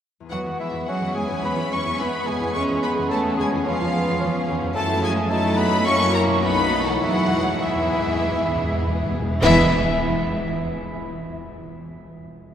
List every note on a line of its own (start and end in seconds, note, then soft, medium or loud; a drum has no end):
0.20 2.36 E2 soft
0.20 4.13 B3 soft
0.25 2.44 G#4 soft
0.25 2.49 B4 soft
0.30 0.37 E2 soft
0.30 0.36 E3 soft
0.30 0.40 F#3 soft
0.30 2.51 G#3 soft
0.30 4.71 B3 soft
0.30 2.51 B3 soft
0.30 0.84 B3 soft
0.30 2.51 E4 soft
0.30 0.58 F#4 medium
0.30 4.71 G#4 soft
0.30 0.39 F#5 medium
0.30 0.58 F#5 medium
0.45 0.51 E2 soft
0.45 0.51 E3 soft
0.59 0.68 E3 soft
0.59 0.72 E4 soft
0.59 0.87 E5 soft
0.59 0.66 E5 soft
0.73 0.79 E2 medium
0.73 0.78 E3 soft
0.86 1.16 F#3 soft
0.86 1.98 C#4 soft
0.86 1.14 F#4 medium
0.86 1.14 F#5 medium
0.86 1.15 F#5 soft
1.00 1.07 E2 soft
1.00 1.06 G#3 soft
1.14 1.20 E2 medium
1.14 1.20 E3 soft
1.14 1.24 G#3 soft
1.14 1.28 G#4 soft
1.14 1.43 G#5 medium
1.14 1.23 G#5 soft
1.28 1.35 E2 soft
1.28 1.34 E3 soft
1.41 1.49 E2 medium
1.41 1.47 E3 medium
1.41 1.72 B3 medium
1.41 1.57 B4 medium
1.41 1.70 B5 medium
1.41 1.72 B5 medium
1.56 1.63 E2 soft
1.56 1.62 E3 soft
1.71 1.77 E2 soft
1.71 1.76 G#3 soft
1.71 2.00 C#4 medium
1.71 2.00 C#5 soft
1.71 1.98 C#6 medium
1.71 2.00 C#6 medium
1.85 1.91 E2 medium
1.85 1.91 E3 soft
1.99 2.05 E2 soft
1.99 2.05 E3 soft
1.99 2.54 B3 medium
1.99 2.28 B3 medium
1.99 2.28 B4 medium
1.99 2.29 B5 medium
1.99 2.27 B5 medium
2.27 2.33 E2 medium
2.27 2.32 E3 medium
2.27 2.56 G#3 medium
2.27 2.55 G#4 medium
2.27 2.55 G#5 medium
2.27 2.54 G#5 medium
2.37 4.68 E2 soft
2.37 2.46 E2 soft
2.37 2.46 E3 soft
2.41 4.61 C#4 soft
2.46 4.73 G#4 soft
2.51 2.60 E2 medium
2.51 2.59 C#3 medium
2.51 4.71 C#4 medium
2.51 4.75 B4 soft
2.51 2.81 C#5 medium
2.51 2.62 C#6 medium
2.55 3.11 G#3 medium
2.55 4.71 B3 medium
2.55 4.71 C#4 medium
2.55 2.83 C#4 medium
2.55 2.61 C#6 medium
2.68 2.74 E2 soft
2.68 2.73 F3 soft
2.82 2.93 B3 medium
2.82 3.08 B4 medium
2.82 3.12 B5 medium
2.82 2.91 B5 medium
2.95 3.02 E2 medium
2.95 3.01 C#3 medium
3.09 3.38 A3 medium
3.09 3.65 C#4 medium
3.09 3.36 A4 medium
3.09 3.40 A5 medium
3.09 3.20 A5 medium
3.24 3.30 E2 soft
3.24 3.29 G#3 soft
3.37 3.42 E2 medium
3.37 3.43 C#3 medium
3.37 3.65 G#3 medium
3.37 3.49 G#4 medium
3.37 3.67 G#5 medium
3.37 3.48 G#5 medium
3.51 3.57 E2 medium
3.51 3.57 F3 soft
3.64 3.70 E2 medium
3.64 3.71 C#3 medium
3.64 4.47 F3 medium
3.64 3.78 C#4 medium
3.64 4.46 F4 medium
3.64 4.48 F5 medium
3.64 4.47 F5 medium
3.79 3.84 E2 soft
3.79 3.85 F3 medium
3.92 3.98 E2 medium
3.92 3.99 G#3 medium
3.92 4.20 B3 medium
4.07 4.12 E2 medium
4.07 4.13 C#3 medium
4.20 4.26 E2 medium
4.20 4.28 F3 medium
4.20 4.77 C#4 medium
4.48 4.53 E2 medium
4.48 4.55 C#3 medium
4.58 5.68 F#2 medium
4.62 4.67 E2 medium
4.62 4.67 F3 medium
4.62 5.72 C#4 soft
4.67 5.77 E4 soft
4.71 5.27 A3 medium
4.71 5.27 C#4 medium
4.71 5.26 E4 medium
4.71 5.30 E4 medium
4.71 5.86 A4 soft
4.71 4.81 A5 medium
4.76 5.82 F#2 medium
4.76 5.27 F#3 medium
4.76 5.27 A3 medium
4.76 4.84 A3 medium
4.76 4.88 A4 medium
4.76 5.01 A5 medium
5.02 5.31 G#3 medium
5.02 5.32 G#4 medium
5.02 5.32 G#5 medium
5.02 5.11 G#5 medium
5.30 5.85 F#3 medium
5.30 5.85 A3 medium
5.30 5.58 A3 medium
5.30 5.85 C#4 medium
5.30 5.85 D#4 medium
5.30 5.84 E4 medium
5.30 5.85 E4 medium
5.30 5.56 A4 medium
5.30 5.57 A5 medium
5.30 5.58 A5 medium
5.56 5.86 B3 medium
5.56 5.86 B4 medium
5.56 5.64 B5 medium
5.56 5.86 B5 medium
5.69 6.37 F#2 medium
5.73 6.39 C#4 soft
5.78 6.42 E4 soft
5.82 6.42 F#2 medium
5.82 6.42 F#3 medium
5.82 6.43 A#3 medium
5.82 6.71 C#4 medium
5.82 6.43 E4 medium
5.82 6.42 E4 medium
5.82 6.12 F#4 medium
5.82 6.44 A#4 soft
5.82 6.13 C#5 medium
5.82 6.13 C#6 medium
5.82 6.14 C#6 loud
5.87 6.14 C#4 medium
6.13 6.43 A#3 medium
6.13 6.42 F#4 medium
6.13 6.44 A#4 medium
6.13 6.20 A#5 medium
6.13 6.22 A#5 medium
6.26 6.96 B2 medium
6.31 6.99 A3 soft
6.35 7.01 D#4 soft
6.42 7.02 B1 medium
6.42 7.01 F#3 medium
6.42 7.01 A3 medium
6.42 7.02 B3 medium
6.42 6.88 B3 medium
6.42 7.02 D#4 medium
6.42 7.03 D#4 medium
6.42 7.02 A4 medium
6.42 6.87 B4 medium
6.42 6.86 B5 medium
6.42 6.87 B5 medium
6.85 9.37 E3 soft
6.85 7.02 F#3 medium
6.85 7.01 F#4 medium
6.85 7.01 F#5 medium
6.89 9.43 G#3 soft
6.89 7.02 F#5 medium
6.94 9.43 E4 soft
6.98 7.09 E2 soft
6.98 7.61 E3 medium
6.98 7.61 E4 medium
6.98 9.09 E4 medium
6.98 7.61 F#4 medium
6.98 7.60 G#4 medium
6.98 9.43 B4 soft
6.98 7.61 F#5 medium
7.03 9.22 E2 medium
7.03 7.61 F#3 medium
7.03 7.61 G#3 medium
7.03 7.61 B3 medium
7.03 7.62 E4 medium
7.03 7.62 F#5 medium
7.10 7.17 E2 soft
7.18 7.25 E2 soft
7.26 7.32 E2 soft
7.33 7.40 E2 soft
7.42 7.49 E2 soft
7.50 7.57 E2 soft
7.61 9.18 E3 medium
7.61 8.80 E3 medium
7.61 9.10 G#3 medium
7.61 9.18 B3 medium
7.61 8.80 E4 medium
7.61 9.18 E4 medium
7.61 9.10 E4 medium
7.61 9.18 G#4 medium
7.61 8.80 E5 medium
7.61 8.84 E5 medium
7.67 7.74 E2 soft
7.75 7.81 E2 soft
7.83 7.89 E2 medium
7.90 7.98 E2 medium
7.99 8.06 E2 medium
8.08 8.14 E2 medium
8.15 8.22 E2 medium
8.23 8.30 E2 medium
8.31 8.38 E2 medium
8.39 8.47 E2 medium
8.48 8.54 E2 medium
8.56 8.63 E2 medium
8.64 8.70 E2 medium
8.71 8.77 E2 medium
8.78 8.86 E2 medium
8.87 8.93 E2 medium
8.95 9.02 E2 medium
9.03 9.10 E2 medium
9.11 9.18 E2 medium
9.19 9.25 E2 loud
9.27 9.35 E2 loud
9.42 9.70 E2 loud
9.42 9.76 E2 medium
9.42 9.77 E3 medium
9.42 9.76 E3 medium
9.42 9.77 G#3 medium
9.42 9.68 G#3 medium
9.42 9.68 B3 medium
9.42 9.76 B3 medium
9.42 9.76 E4 medium
9.42 9.68 E4 medium
9.42 9.69 E4 medium
9.42 9.77 E4 medium
9.42 9.76 G#4 medium
9.42 9.77 B4 medium
9.42 9.77 E5 medium
9.42 9.77 E5 loud
9.42 concert bass drum medium
9.42 crash medium